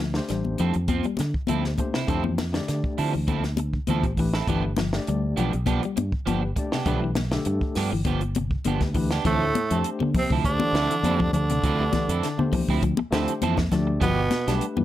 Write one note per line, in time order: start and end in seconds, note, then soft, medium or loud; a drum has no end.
0.00 0.19 D2 medium
0.00 0.18 F3 medium
0.00 muted clean electric guitar stroke soft
0.14 0.75 A3 medium
0.14 0.75 D4 medium
0.14 0.76 G4 medium
0.14 0.76 C5 medium
0.14 snare medium
0.29 0.55 A1 medium
0.29 0.48 G3 medium
0.29 muted clean electric guitar stroke soft
0.29 snare soft
0.29 closed hi-hat medium
0.45 high conga medium
0.58 0.73 F2 medium
0.58 0.75 F3 medium
0.58 0.77 F3 medium
0.58 0.75 C4 medium
0.58 0.75 E4 medium
0.58 0.75 A4 medium
0.58 closed hi-hat soft
0.74 1.01 F2 medium
0.74 muted clean electric guitar stroke soft
0.74 closed hi-hat soft
0.88 1.05 F3 medium
0.88 1.05 C4 medium
0.88 muted clean electric guitar stroke medium
0.88 kick medium
0.88 closed hi-hat medium
0.88 high conga medium
1.03 1.23 G3 medium
1.03 muted clean electric guitar stroke soft
1.03 closed hi-hat soft
1.03 high conga medium
1.17 1.33 D3 medium
1.17 muted clean electric guitar stroke soft
1.17 snare soft
1.17 closed hi-hat medium
1.17 high conga medium
1.34 kick medium
1.47 1.74 D2 medium
1.47 1.64 F3 medium
1.47 1.67 F3 medium
1.47 1.64 C4 medium
1.47 1.64 E4 medium
1.47 1.64 A4 medium
1.47 closed hi-hat medium
1.47 high conga medium
1.64 1.72 G4 medium
1.64 1.73 C5 medium
1.64 muted clean electric guitar stroke soft
1.64 snare soft
1.78 1.95 A3 medium
1.78 1.95 D4 medium
1.78 1.95 G4 medium
1.78 1.95 C5 medium
1.78 muted clean electric guitar stroke soft
1.78 kick medium
1.78 closed hi-hat soft
1.78 high conga medium
1.94 2.03 C3 medium
1.94 2.07 C4 soft
1.94 2.08 E4 soft
1.94 snare medium
2.07 2.59 F2 medium
2.07 2.18 D3 medium
2.07 2.25 F3 medium
2.07 2.31 A3 medium
2.07 2.24 C4 medium
2.07 2.31 D4 medium
2.07 2.24 E4 medium
2.07 2.31 G4 medium
2.07 2.23 A4 medium
2.07 2.32 C5 loud
2.07 kick medium
2.07 closed hi-hat medium
2.24 2.42 E3 medium
2.24 muted clean electric guitar stroke soft
2.24 high conga medium
2.38 muted clean electric guitar stroke soft
2.38 snare medium
2.38 closed hi-hat medium
2.38 high conga medium
2.52 2.72 D3 medium
2.52 3.13 A3 medium
2.52 3.14 D4 medium
2.52 3.14 G4 medium
2.52 3.14 D5 medium
2.52 snare medium
2.52 closed hi-hat soft
2.68 2.82 D3 medium
2.68 muted clean electric guitar stroke soft
2.68 snare soft
2.68 closed hi-hat medium
2.84 kick medium
2.98 3.12 D3 medium
2.98 3.14 F3 medium
2.98 3.13 C4 medium
2.98 3.13 E4 medium
2.98 3.13 A4 medium
2.98 open hi-hat medium
3.13 3.77 D2 medium
3.13 3.22 E3 medium
3.13 muted clean electric guitar stroke soft
3.28 3.46 D3 medium
3.28 3.44 F3 medium
3.28 3.44 C4 medium
3.28 3.43 E4 medium
3.28 3.43 A4 medium
3.28 kick medium
3.28 closed hi-hat medium
3.28 high conga medium
3.44 muted clean electric guitar stroke soft
3.44 snare soft
3.44 closed hi-hat soft
3.57 muted clean electric guitar stroke soft
3.57 closed hi-hat soft
3.57 high conga medium
3.73 kick medium
3.87 4.01 D2 medium
3.87 4.06 E3 medium
3.87 4.04 F3 medium
3.87 4.05 C4 medium
3.87 4.05 E4 medium
3.87 4.04 A4 medium
3.87 closed hi-hat medium
3.87 high conga medium
4.03 4.41 A1 medium
4.03 4.11 G4 medium
4.03 4.11 C5 medium
4.03 muted clean electric guitar stroke soft
4.03 kick medium
4.03 closed hi-hat soft
4.17 4.37 E3 medium
4.17 4.34 A3 medium
4.17 4.34 D4 medium
4.17 4.34 G4 medium
4.17 4.35 B4 medium
4.17 muted clean electric guitar stroke soft
4.17 kick medium
4.17 open hi-hat soft
4.34 4.48 C4 soft
4.34 4.48 E4 soft
4.34 4.48 A4 medium
4.34 snare medium
4.34 closed hi-hat soft
4.47 4.98 G1 loud
4.47 4.67 E3 medium
4.47 4.64 F3 medium
4.47 4.71 A3 medium
4.47 4.64 B3 medium
4.47 4.71 D4 medium
4.47 4.64 D4 medium
4.47 4.71 G4 medium
4.47 4.64 G4 medium
4.47 4.71 B4 medium
4.47 kick medium
4.47 closed hi-hat medium
4.65 muted clean electric guitar stroke soft
4.77 4.97 F3 medium
4.77 muted clean electric guitar stroke soft
4.77 snare medium
4.77 closed hi-hat soft
4.77 high conga medium
4.93 5.54 A3 medium
4.93 5.54 D4 medium
4.93 5.54 G4 medium
4.93 5.54 D5 medium
4.93 snare medium
5.07 5.33 D2 medium
5.07 5.27 G3 medium
5.07 muted clean electric guitar stroke soft
5.07 closed hi-hat medium
5.36 5.51 B1 medium
5.36 5.53 F3 medium
5.36 5.57 F3 medium
5.36 5.53 B3 medium
5.36 5.52 D4 medium
5.36 5.52 G4 medium
5.36 closed hi-hat soft
5.53 5.79 B1 medium
5.53 muted clean electric guitar stroke soft
5.53 closed hi-hat soft
5.66 5.83 F3 medium
5.66 5.83 B3 medium
5.66 5.82 D4 medium
5.66 5.82 G4 medium
5.66 kick medium
5.66 closed hi-hat medium
5.66 high conga medium
5.83 6.02 G3 medium
5.83 muted clean electric guitar stroke soft
5.83 closed hi-hat soft
5.96 6.11 G2 medium
5.96 muted clean electric guitar stroke soft
5.96 closed hi-hat soft
5.96 high conga medium
6.12 kick medium
6.26 6.52 G1 medium
6.26 6.42 F3 medium
6.26 6.46 F3 medium
6.26 6.42 B3 medium
6.26 6.43 D4 medium
6.26 6.41 G4 medium
6.26 closed hi-hat medium
6.26 high conga medium
6.42 6.50 G4 medium
6.42 6.50 B4 medium
6.42 muted clean electric guitar stroke soft
6.56 6.73 A3 medium
6.56 6.73 D4 medium
6.56 6.73 G4 medium
6.56 6.74 D5 medium
6.56 muted clean electric guitar stroke soft
6.56 kick medium
6.56 closed hi-hat soft
6.72 6.81 C3 medium
6.72 6.85 B3 soft
6.72 6.85 D4 soft
6.72 6.85 G4 medium
6.72 snare medium
6.86 7.37 B1 loud
6.86 6.96 D3 medium
6.86 7.02 F3 medium
6.86 7.09 A3 medium
6.86 7.01 B3 medium
6.86 7.01 D4 medium
6.86 7.09 D4 medium
6.86 7.00 G4 medium
6.86 7.10 G4 medium
6.86 7.10 B4 loud
6.86 kick medium
6.86 closed hi-hat medium
7.02 7.21 E3 medium
7.02 muted clean electric guitar stroke soft
7.15 muted clean electric guitar stroke soft
7.15 snare medium
7.15 closed hi-hat medium
7.15 high conga medium
7.31 7.50 D3 medium
7.31 7.92 A3 medium
7.31 7.92 D4 medium
7.31 7.92 G4 medium
7.31 7.92 A4 medium
7.31 snare medium
7.31 closed hi-hat soft
7.45 7.60 G2 medium
7.45 muted clean electric guitar stroke soft
7.45 closed hi-hat medium
7.61 kick medium
7.75 7.90 G2 medium
7.75 7.92 F3 medium
7.75 7.92 B3 medium
7.75 7.91 D4 medium
7.75 7.91 G4 medium
7.75 snare soft
7.75 open hi-hat medium
7.92 8.54 G1 medium
7.92 8.01 E3 medium
7.92 muted clean electric guitar stroke soft
8.05 8.23 D3 medium
8.05 8.22 F3 medium
8.05 8.22 B3 medium
8.05 8.21 G4 loud
8.05 muted clean electric guitar stroke medium
8.05 kick medium
8.05 closed hi-hat medium
8.05 high conga medium
8.21 muted clean electric guitar stroke soft
8.21 closed hi-hat soft
8.21 high conga medium
8.35 8.54 C3 medium
8.35 muted clean electric guitar stroke soft
8.35 closed hi-hat medium
8.35 high conga medium
8.51 kick medium
8.65 8.79 G1 medium
8.65 8.83 D3 medium
8.65 8.82 F3 medium
8.65 8.82 B3 medium
8.65 8.82 D4 medium
8.65 8.81 G4 medium
8.65 closed hi-hat medium
8.65 high conga medium
8.81 9.18 D2 medium
8.81 8.88 G4 medium
8.81 8.89 B4 medium
8.81 muted clean electric guitar stroke soft
8.81 kick medium
8.81 snare soft
8.81 closed hi-hat soft
8.94 9.13 E3 medium
8.94 9.11 A3 medium
8.94 9.11 D4 medium
8.94 9.11 G4 medium
8.94 9.12 B4 medium
8.94 muted clean electric guitar stroke soft
8.94 kick medium
8.94 open hi-hat medium
9.11 9.25 B3 soft
9.11 9.25 D4 medium
9.11 9.26 G4 medium
9.11 snare medium
9.11 closed hi-hat soft
9.25 9.51 D2 loud
9.25 9.82 A2 loud
9.25 9.43 E3 medium
9.25 9.44 F3 medium
9.25 9.82 A3 loud
9.25 9.44 C4 medium
9.25 9.44 A4 medium
9.25 muted clean electric guitar stroke medium
9.25 kick medium
9.25 closed hi-hat medium
9.25 high conga soft
9.55 muted clean electric guitar stroke soft
9.55 closed hi-hat soft
9.55 high conga medium
9.71 9.83 F2 medium
9.71 9.89 F3 medium
9.71 10.08 A3 medium
9.71 9.89 C4 soft
9.71 10.08 D4 medium
9.71 10.09 G4 medium
9.71 9.89 A4 soft
9.71 10.09 C5 medium
9.71 closed hi-hat medium
9.84 closed hi-hat medium
9.84 high conga soft
10.00 10.18 D3 medium
10.00 10.13 D3 medium
10.00 muted clean electric guitar stroke soft
10.00 high conga medium
10.14 10.29 C3 medium
10.14 10.31 C4 medium
10.14 muted fingered electric bass stroke soft
10.14 muted clean electric guitar stroke soft
10.14 kick medium
10.14 open hi-hat medium
10.14 high conga medium
10.14 low conga medium
10.30 10.56 D2 medium
10.30 10.48 C3 medium
10.30 10.44 F3 medium
10.30 10.44 C4 medium
10.30 10.45 E4 medium
10.30 10.45 A4 medium
10.30 kick medium
10.44 11.31 D3 medium
10.44 10.75 A3 medium
10.44 11.30 D4 loud
10.44 10.75 D4 medium
10.44 10.76 G4 medium
10.44 10.76 C5 medium
10.44 muted clean electric guitar stroke soft
10.44 kick medium
10.44 closed hi-hat medium
10.44 high conga soft
10.59 10.77 E3 medium
10.59 muted clean electric guitar stroke soft
10.59 high conga loud
10.73 10.87 D2 medium
10.73 10.93 F3 medium
10.73 10.94 C4 medium
10.73 10.94 E4 medium
10.73 10.94 A4 medium
10.73 snare medium
10.73 closed hi-hat medium
10.91 11.08 E3 medium
10.91 closed hi-hat soft
11.03 11.29 F2 medium
11.03 11.20 F3 medium
11.03 11.42 A3 medium
11.03 11.20 C4 medium
11.03 11.42 D4 medium
11.03 11.20 E4 medium
11.03 11.43 G4 medium
11.03 11.20 A4 medium
11.03 11.43 C5 medium
11.03 closed hi-hat medium
11.03 high conga medium
11.20 11.38 D3 medium
11.20 muted clean electric guitar stroke soft
11.20 kick medium
11.20 low conga medium
11.33 11.58 D2 loud
11.33 12.49 D3 medium
11.33 12.49 D4 loud
11.33 muted clean electric guitar stroke soft
11.33 closed hi-hat medium
11.33 low conga medium
11.50 11.68 C3 medium
11.50 muted clean electric guitar stroke soft
11.50 closed hi-hat medium
11.64 11.89 D2 loud
11.64 11.83 F3 medium
11.64 11.83 C4 medium
11.64 11.83 E4 medium
11.64 11.83 A4 medium
11.64 kick medium
11.64 closed hi-hat medium
11.64 high conga soft
11.79 12.09 A3 medium
11.79 12.10 D4 medium
11.79 12.10 G4 medium
11.79 12.10 B4 medium
11.93 12.11 E3 medium
11.93 muted clean electric guitar stroke soft
11.93 kick medium
11.93 snare soft
11.93 closed hi-hat medium
11.93 high conga medium
12.09 12.21 F2 loud
12.09 12.27 C4 soft
12.09 12.27 E4 medium
12.09 12.27 A4 medium
12.09 closed hi-hat medium
12.23 12.42 D3 medium
12.23 snare soft
12.23 closed hi-hat medium
12.23 high conga soft
12.38 12.51 D3 medium
12.38 12.76 A3 medium
12.38 12.76 D4 medium
12.38 12.76 G4 medium
12.38 12.76 C5 medium
12.38 muted clean electric guitar stroke medium
12.38 high conga medium
12.53 12.71 E3 medium
12.53 muted clean electric guitar stroke soft
12.53 kick medium
12.53 open hi-hat medium
12.53 high conga medium
12.53 low conga medium
12.69 12.94 D2 medium
12.69 12.82 F3 medium
12.69 12.83 C4 medium
12.69 12.83 E4 medium
12.69 muted clean electric guitar stroke medium
12.69 kick medium
12.83 13.01 F3 medium
12.83 muted clean electric guitar stroke soft
12.83 kick medium
12.83 closed hi-hat medium
12.97 muted clean electric guitar stroke soft
12.97 high conga loud
13.11 13.26 D2 medium
13.11 13.31 D3 medium
13.11 13.32 F3 medium
13.11 13.42 A3 medium
13.11 13.32 C4 medium
13.11 13.42 D4 medium
13.11 13.32 E4 medium
13.11 13.42 G4 medium
13.11 13.32 A4 medium
13.11 13.43 C5 loud
13.11 snare medium
13.11 closed hi-hat medium
13.28 closed hi-hat soft
13.42 13.68 F2 medium
13.42 13.61 E3 medium
13.42 13.58 F3 medium
13.42 13.57 C4 loud
13.42 13.57 E4 medium
13.42 13.57 A4 loud
13.42 closed hi-hat medium
13.42 high conga medium
13.57 muted clean electric guitar stroke soft
13.57 kick medium
13.57 snare medium
13.57 high conga medium
13.72 13.97 D2 medium
13.72 13.91 F3 medium
13.72 14.02 A3 medium
13.72 14.02 D4 medium
13.72 14.03 G4 medium
13.72 14.03 D5 loud
13.72 muted clean electric guitar stroke soft
13.72 snare soft
13.72 closed hi-hat medium
13.72 low conga medium
13.87 muted clean electric guitar stroke soft
14.00 14.27 G1 loud
14.00 14.58 B2 loud
14.00 14.20 F3 medium
14.00 14.21 F3 medium
14.00 14.20 B3 medium
14.00 14.58 B3 loud
14.00 14.20 G4 medium
14.00 muted clean electric guitar stroke medium
14.00 kick loud
14.00 closed hi-hat medium
14.00 high conga soft
14.31 muted clean electric guitar stroke soft
14.31 snare soft
14.31 closed hi-hat medium
14.31 high conga medium
14.46 14.59 B1 medium
14.46 14.66 G3 medium
14.46 14.84 A3 medium
14.46 14.65 B3 soft
14.46 14.84 D4 medium
14.46 14.65 D4 soft
14.46 14.85 G4 medium
14.46 14.65 G4 soft
14.46 14.85 B4 medium
14.46 snare soft
14.46 closed hi-hat medium
14.61 closed hi-hat medium
14.61 high conga soft
14.77 14.85 G2 medium
14.77 14.85 E3 medium
14.77 muted clean electric guitar stroke soft
14.77 high conga medium